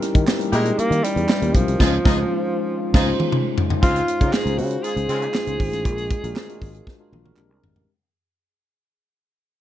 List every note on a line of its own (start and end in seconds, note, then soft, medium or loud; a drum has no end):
0.00 1.78 E3 medium
0.00 0.38 G3 medium
0.00 0.38 C#4 medium
0.00 1.78 C#4 medium
0.00 0.39 D#4 medium
0.00 0.39 E4 medium
0.00 1.78 G4 medium
0.00 0.40 A#4 medium
0.00 snare soft
0.00 closed hi-hat medium
0.15 0.24 D#3 loud
0.15 kick loud
0.15 closed hi-hat medium
0.27 snare loud
0.27 clap medium
0.38 0.62 G3 medium
0.38 0.62 C#4 medium
0.38 0.62 D#4 medium
0.38 0.62 E4 medium
0.38 0.62 A#4 medium
0.38 closed hi-hat medium
0.52 0.70 A#2 medium
0.52 0.80 G#3 loud
0.52 0.69 E4 loud
0.52 0.69 G4 loud
0.52 0.69 A#4 loud
0.52 closed hi-hat medium
0.64 0.99 G3 medium
0.64 0.99 C#4 medium
0.64 0.99 D#4 medium
0.64 0.99 E4 medium
0.64 0.99 A#4 medium
0.64 closed hi-hat medium
0.78 1.05 A#3 loud
0.78 muted fretless electric bass stroke soft
0.78 closed hi-hat medium
0.90 0.99 D#3 loud
0.90 closed hi-hat medium
1.03 1.37 G3 medium
1.03 1.56 G3 loud
1.03 1.37 C#4 medium
1.03 1.37 D#4 medium
1.03 1.38 E4 medium
1.03 1.37 A#4 medium
1.03 snare soft
1.03 closed hi-hat medium
1.16 1.25 E2 loud
1.16 closed hi-hat soft
1.29 snare loud
1.29 clap medium
1.41 1.51 D#2 medium
1.41 1.75 G3 medium
1.41 1.76 C#4 medium
1.41 1.76 D#4 medium
1.41 1.76 E4 medium
1.41 1.76 A#4 medium
1.41 closed hi-hat medium
1.54 1.63 B1 loud
1.54 3.32 F3 medium
1.54 kick medium
1.54 closed hi-hat medium
1.68 1.76 C2 loud
1.68 closed hi-hat medium
1.79 1.97 C#2 loud
1.79 3.66 D#3 medium
1.79 1.96 G#3 medium
1.79 3.66 C4 medium
1.79 1.97 C#4 loud
1.79 1.92 D#4 loud
1.79 1.97 D#4 medium
1.79 3.66 F4 medium
1.79 1.93 F4 loud
1.79 1.97 F4 loud
1.79 1.93 G#4 medium
1.79 1.97 C5 loud
1.79 kick loud
1.79 snare medium
1.79 crash medium
2.04 2.22 C#2 loud
2.04 2.22 G#3 loud
2.04 2.22 C#4 loud
2.04 2.18 D#4 loud
2.04 2.22 D#4 loud
2.04 2.22 F4 loud
2.04 2.18 F4 medium
2.04 2.18 G#4 loud
2.04 2.22 C5 medium
2.04 kick loud
2.04 snare loud
2.93 3.11 C#2 loud
2.93 3.11 G#3 loud
2.93 3.11 C#4 loud
2.93 3.07 D#4 loud
2.93 3.11 D#4 loud
2.93 3.07 F4 loud
2.93 3.12 F4 loud
2.93 3.07 G#4 loud
2.93 3.12 C5 loud
2.93 kick loud
2.93 snare loud
2.93 crash medium
3.20 high tom medium
3.32 mid tom loud
3.58 floor tom loud
3.70 floor tom loud
3.81 4.00 C#2 medium
3.81 5.84 D#3 medium
3.81 4.02 G#3 medium
3.81 4.16 G#3 medium
3.81 4.02 C4 loud
3.81 4.16 C#4 medium
3.81 4.16 D#4 medium
3.81 4.02 F4 loud
3.81 4.17 F4 medium
3.81 5.84 F4 medium
3.81 4.34 F4 loud
3.81 5.84 C5 medium
3.81 4.17 C5 medium
3.81 kick loud
3.81 closed hi-hat medium
3.96 closed hi-hat soft
4.08 closed hi-hat medium
4.20 4.30 C#3 loud
4.20 4.43 G#3 medium
4.20 4.43 C#4 medium
4.20 4.43 D#4 medium
4.20 4.57 D#4 medium
4.20 4.43 F4 medium
4.20 4.57 F4 medium
4.20 4.57 A#4 medium
4.20 4.43 C5 medium
4.20 kick medium
4.20 closed hi-hat medium
4.32 4.60 G#4 loud
4.32 snare loud
4.32 clap medium
4.45 4.59 C#2 loud
4.45 4.91 G#3 medium
4.45 4.91 C#4 medium
4.45 4.91 D#4 medium
4.45 4.92 F4 medium
4.45 4.92 C5 medium
4.45 closed hi-hat medium
4.58 4.76 C#3 loud
4.58 4.84 F#4 loud
4.58 open hi-hat medium
4.71 closed hi-hat medium
4.83 4.94 D#4 medium
4.83 4.94 F4 medium
4.83 7.37 G#4 loud
4.83 4.94 G#4 medium
4.83 closed hi-hat medium
4.95 5.05 C#2 loud
4.95 5.19 G#3 medium
4.95 5.19 C#4 medium
4.95 5.19 D#4 medium
4.95 5.19 F4 medium
4.95 5.19 C5 medium
4.95 closed hi-hat medium
5.09 5.27 C#3 loud
5.09 5.29 G#3 medium
5.09 5.30 C4 loud
5.09 5.29 F4 loud
5.09 closed hi-hat medium
5.21 5.44 G#3 medium
5.21 5.44 C#4 medium
5.21 5.44 D#4 medium
5.21 5.44 F4 medium
5.21 5.45 C5 medium
5.21 closed hi-hat soft
5.34 snare loud
5.34 clap medium
5.47 5.56 C#2 medium
5.47 5.81 G#3 medium
5.47 5.81 C#4 medium
5.47 5.82 D#4 medium
5.47 5.82 F4 medium
5.47 5.82 C5 medium
5.47 closed hi-hat medium
5.60 5.69 G#1 loud
5.60 kick medium
5.60 open hi-hat medium
5.72 5.85 A1 medium
5.72 snare soft
5.72 closed hi-hat medium
5.84 6.12 A#1 loud
5.84 7.86 D3 medium
5.84 7.36 F#3 medium
5.84 7.36 G#3 medium
5.84 6.19 G#3 medium
5.84 6.19 D4 medium
5.84 6.20 F4 medium
5.84 6.20 F#4 medium
5.84 6.20 A#4 medium
5.84 kick loud
5.84 closed hi-hat medium
5.98 closed hi-hat medium
6.10 kick loud
6.10 closed hi-hat medium
6.23 6.33 A#1 medium
6.23 6.46 G#3 medium
6.23 6.46 D4 medium
6.23 6.46 F4 medium
6.23 6.47 F#4 medium
6.23 6.47 A#4 loud
6.23 closed hi-hat medium
6.36 snare loud
6.36 clap medium
6.48 6.94 G#3 medium
6.48 6.94 D4 medium
6.48 6.95 F4 medium
6.48 6.94 F#4 medium
6.48 6.95 A#4 medium
6.48 closed hi-hat medium
6.62 6.79 G#1 medium
6.62 kick medium
6.62 open hi-hat medium
6.74 closed hi-hat medium
6.87 kick medium
6.87 snare medium
6.99 7.22 G#3 medium
6.99 7.23 D4 medium
6.99 7.23 F4 medium
6.99 7.23 F#4 medium
6.99 7.23 A#4 medium
7.12 7.30 A#1 loud
7.12 high tom medium
7.24 7.36 G#3 medium
7.24 7.36 D4 medium
7.24 7.38 F4 medium
7.24 7.38 F#4 medium
7.24 7.37 A#4 medium
7.24 high tom medium
7.36 7.50 A#1 medium
7.36 7.47 G#3 medium
7.36 7.88 G#3 medium
7.36 7.48 C4 medium
7.36 7.88 C4 medium
7.36 7.48 D4 medium
7.36 7.88 G4 medium
7.36 7.49 G4 medium
7.36 7.49 A#4 loud
7.36 clap medium
7.49 7.59 C2 medium
7.49 7.84 G#3 medium
7.49 7.84 C4 medium
7.49 7.84 D4 medium
7.49 7.84 G4 medium
7.49 7.84 A#4 medium
7.64 7.72 G#1 medium
7.64 floor tom medium
7.76 7.85 A1 medium
7.76 floor tom loud